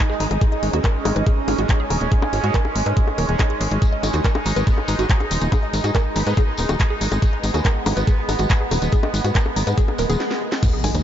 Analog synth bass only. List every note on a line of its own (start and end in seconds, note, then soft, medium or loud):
0.20 0.27 G#1 medium
0.31 0.38 G#1 medium
0.63 0.70 G#1 loud
0.73 0.81 D#2 medium
1.05 1.13 G#1 medium
1.16 1.23 G#1 medium
1.48 1.55 G#1 medium
1.59 1.66 G#1 medium
1.90 1.98 D#1 medium
2.01 2.08 D#1 medium
2.33 2.40 G#1 medium
2.44 2.51 G#2 medium
2.76 2.83 G#1 medium
2.86 2.93 G#2 medium
3.18 3.25 D#1 loud
3.29 3.36 D#1 medium
3.61 3.68 G#1 loud
3.71 3.79 G#1 medium
4.03 4.10 G#1 medium
4.14 4.21 D#2 medium
4.46 4.53 G#1 medium
4.56 4.64 G#1 medium
4.88 4.96 G#1 medium
4.99 5.06 G#1 medium
5.31 5.38 D#1 medium
5.41 5.49 D#1 medium
5.73 5.81 G#1 loud
5.84 5.91 G#2 medium
6.16 6.23 G#1 medium
6.27 6.34 G#2 medium
6.58 6.66 D#1 medium
6.69 6.76 D#1 medium
7.01 7.08 G#1 loud
7.12 7.19 G#1 medium
7.44 7.51 G#1 medium
7.54 7.62 D#2 medium
7.86 7.93 G#1 medium
7.97 8.04 G#1 medium
8.29 8.36 G#1 medium
8.39 8.47 G#1 medium
8.71 8.79 D#1 medium
8.82 8.89 D#1 medium
9.14 9.21 G#1 loud
9.24 9.32 G#2 medium
9.56 9.64 G#1 medium
9.67 9.74 G#2 medium
9.99 10.06 D#1 medium
10.10 10.17 D#1 medium
10.84 10.91 G#1 medium
10.95 11.02 D#2 medium